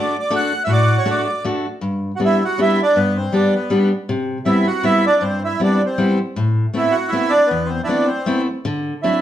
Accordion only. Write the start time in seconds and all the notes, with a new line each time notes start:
Already playing: D5
0.19 D5
0.36 F#5
0.64 E5
0.69 F#4 D5
0.98 C#5
1.10 D5
2.16 F#4
2.25 E4
2.45 F#4
2.61 E4
2.83 D4
2.96 B3
3.17 C4
3.33 D4
3.55 B3
4.46 E4
4.67 F#4
4.85 E4
5.07 D4
5.22 C4
5.45 E4
5.63 D4
5.86 C4
6.77 E4
6.92 F#4
7.09 E4
7.29 D4
7.47 B3
7.66 C4
7.84 D4 E4
8.06 C4
9.03 E4